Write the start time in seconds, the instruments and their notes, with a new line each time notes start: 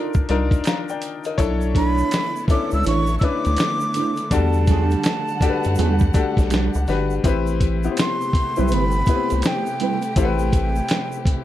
Already playing: grand piano D4 D#4 F4 A4 A#4 D5, nylon-string guitar D#4 F4 A#4 D5
0.14 analog synth bass C2, kick, shaker
0.29 analog synth bass C2, grand piano D4 D#4 F4 A#4, closed hi-hat
0.51 kick, closed hi-hat, shaker
0.64 grand piano F5 A#5, finger snap, snare, closed hi-hat, shaker
0.89 grand piano D5 G5, shaker
1.02 closed hi-hat, shaker
1.24 grand piano A#4 D#5, closed hi-hat, shaker
1.38 analog synth bass B1, string section D3 A3 B3 E4, grand piano D4 E4 A4 C#5, kick, closed hi-hat, shaker
1.61 shaker
1.75 nylon-string guitar D4 E4 A4 C#5, flute B5, kick, closed hi-hat
1.98 shaker
2.11 finger snap, snare, closed hi-hat, shaker
2.36 shaker
2.48 analog synth bass C#2, grand piano C#4 D4 E4 A4, flute D6, kick, closed hi-hat, shaker
2.71 analog synth bass C#2, flute E6, shaker
2.83 analog synth bass A1, nylon-string guitar D4 E4 A4 C#5, closed hi-hat, shaker
2.88 flute C#6
3.07 shaker
3.19 grand piano C#4 D4 E4 B4, flute E6, kick, closed hi-hat
3.25 flute D6
3.45 analog synth bass D2, closed hi-hat, shaker
3.57 finger snap, snare, closed hi-hat, shaker
3.80 shaker
3.94 nylon-string guitar D4 E4 A4 C#5, closed hi-hat, shaker
4.17 closed hi-hat, shaker
4.31 analog synth bass E2, string section G3 F#5, grand piano G3 D4 F#4 A4, flute A5, kick, closed hi-hat, shaker
4.53 shaker
4.67 nylon-string guitar F#3 C#4 F4 G#4, kick, snare, closed hi-hat, shaker
4.83 nylon-string guitar G3 D4 F#4 A4
4.90 closed hi-hat, shaker
5.03 finger snap, snare, closed hi-hat, shaker
5.28 shaker
5.41 analog synth bass F#2, grand piano D4 F#4 G4 A4, kick, closed hi-hat, shaker
5.50 grand piano B4
5.63 analog synth bass F#2, closed hi-hat, shaker
5.75 analog synth bass E2, nylon-string guitar G3 D4 F#4 A4, closed hi-hat, shaker
5.99 kick, shaker
6.14 analog synth bass B1, grand piano D4 F#4 G4 A4, kick, closed hi-hat, shaker
6.37 analog synth bass B1, kick, snare, closed hi-hat, shaker
6.50 nylon-string guitar G3 D4 F#4 A4, finger snap, snare, closed hi-hat, shaker
6.74 analog synth bass C#2, shaker
6.87 analog synth bass G1, grand piano D4 F#4 G4 B4, snare, open hi-hat, shaker
7.10 shaker
7.24 analog synth bass A1, string section C3 A3 G4, grand piano C4 E4 G4 B4, kick, closed hi-hat, shaker
7.47 shaker
7.60 kick, closed hi-hat, shaker
7.84 grand piano B3 E4 G4, shaker
7.91 grand piano C4
7.97 flute C6, finger snap, snare, closed hi-hat, shaker
8.21 shaker
8.33 analog synth bass B1, kick, closed hi-hat
8.56 analog synth bass B1, nylon-string guitar G3 C4 E4 B4, grand piano C4 E4 G4 B4, shaker
8.68 nylon-string guitar G3 C4 E4, shaker
8.72 analog synth bass G1, nylon-string guitar B4, flute B5, closed hi-hat
8.91 shaker
9.06 grand piano B3 E4 G4 B4, kick, closed hi-hat, shaker
9.14 grand piano C4
9.30 analog synth bass C2, closed hi-hat, shaker
9.42 finger snap, snare, closed hi-hat, shaker
9.47 flute G5
9.66 shaker
9.80 nylon-string guitar G3 C4 E4 B4, closed hi-hat
10.02 closed hi-hat, shaker
10.16 analog synth bass A1, grand piano C4 E4 G4 A4, kick, closed hi-hat, shaker
10.20 flute G5
10.25 grand piano B4
10.39 shaker
10.53 kick, closed hi-hat, shaker
10.75 shaker
10.89 finger snap, snare, closed hi-hat, shaker
11.12 shaker
11.25 analog synth bass B1, kick, closed hi-hat